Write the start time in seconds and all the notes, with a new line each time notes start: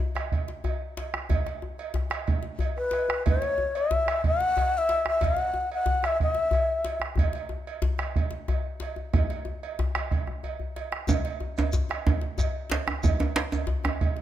0.15 bombo rim, cowbell, djembe tone
0.32 bombo low, cowbell
0.48 djembe slap
0.64 bombo rim, cowbell, djembe tone, djembe bass
0.97 cowbell, djembe slap
1.14 bombo rim, djembe slap, djembe tone
1.29 bombo low, cowbell, djembe bass
1.46 bombo rim, cowbell, djembe slap
1.62 djembe tone
1.78 cowbell, djembe slap
1.94 bombo rim, djembe slap, djembe bass
2.10 bombo rim, cowbell, djembe tone
2.27 bombo rim, bombo low, cowbell, djembe slap
2.43 djembe slap
2.59 cowbell, djembe slap, djembe tone, djembe bass
2.78 B4, bombo rim
2.91 bombo rim, cowbell, djembe slap
3.08 bombo rim, djembe tone
3.26 C#5, bombo rim, bombo low, cowbell, djembe slap, djembe bass
3.42 cowbell, djembe slap
3.58 djembe tone
3.75 E5, cowbell
3.91 djembe slap, djembe bass
4.06 bombo rim, cowbell, djembe tone
4.24 F#5, bombo low, cowbell
4.40 djembe slap
4.57 bombo rim, cowbell, djembe tone, djembe bass
4.78 E5
4.89 cowbell, djembe slap
5.05 E5, bombo rim, djembe tone
5.21 F#5, bombo rim, bombo low, cowbell, djembe slap, djembe bass
5.37 cowbell, djembe slap
5.54 djembe tone
5.72 F#5, cowbell
5.86 djembe slap, djembe bass
6.03 E5, bombo rim, cowbell, djembe tone
6.20 E5, bombo low, cowbell
6.34 djembe slap
6.51 bombo rim, cowbell, djembe tone, djembe bass
6.85 cowbell, djembe slap
7.00 bombo rim, djembe slap, djembe tone
7.16 bombo rim, bombo low, cowbell, djembe slap, djembe bass
7.33 cowbell, djembe slap
7.49 djembe tone
7.67 cowbell
7.82 djembe slap, djembe bass
7.98 bombo rim, cowbell, djembe tone
8.16 bombo low, cowbell
8.31 djembe slap
8.48 bombo rim, cowbell, djembe tone, djembe bass
8.80 cowbell, djembe slap
8.96 djembe slap, djembe tone
9.13 bombo rim, bombo low, cowbell, djembe bass
9.30 cowbell, djembe slap
9.45 djembe tone
9.63 cowbell
9.79 bombo rim, djembe slap, djembe bass
9.95 bombo rim, cowbell, djembe tone
10.11 bombo rim, bombo low, cowbell, djembe slap
10.27 bombo rim, djembe bass
10.43 cowbell, djembe bass
10.60 djembe bass
10.76 cowbell, djembe slap
10.92 bombo rim, djembe slap
11.07 bombo rim, bombo low, cowbell, djembe slap, djembe tone, djembe bass, shekere
11.25 cowbell, djembe slap
11.40 djembe tone
11.57 cowbell, djembe tone, shekere
11.73 djembe slap, djembe bass, shekere
11.89 bombo rim, cowbell, djembe tone
12.07 bombo low, cowbell, djembe tone
12.21 djembe slap
12.38 bombo rim, cowbell, djembe tone, djembe bass, shekere
12.70 djembe slap
12.72 cowbell, djembe slap
12.87 bombo rim, djembe slap, djembe tone
13.03 bombo rim, bombo low, cowbell, djembe slap, djembe bass, shekere
13.20 cowbell, djembe slap, djembe tone
13.36 djembe slap
13.52 cowbell, djembe tone, shekere
13.67 djembe slap, djembe bass
13.84 bombo rim, cowbell, djembe tone
14.01 bombo low, cowbell
14.16 djembe slap